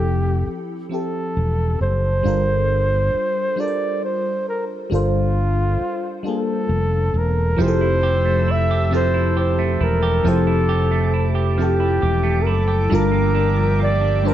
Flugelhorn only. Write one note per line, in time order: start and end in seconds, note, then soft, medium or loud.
0.00 0.59 G4 medium
0.93 1.77 A4 medium
1.81 3.61 C5 medium
3.60 4.03 D5 medium
4.04 4.45 C5 medium
4.49 4.65 A#4 medium
4.94 6.22 F4 medium
6.29 7.19 A4 medium
7.18 7.63 A#4 medium
7.62 8.53 C5 loud
8.51 8.93 E5 loud
8.95 9.35 C5 loud
9.39 9.85 C5 medium
9.83 10.30 A#4 medium
10.28 11.33 A4 medium
11.61 12.44 G4 medium
12.43 12.52 A#4 medium
12.50 12.96 A4 loud
12.94 13.81 A#4 medium
13.83 14.29 D5 loud
14.27 14.34 A#4 loud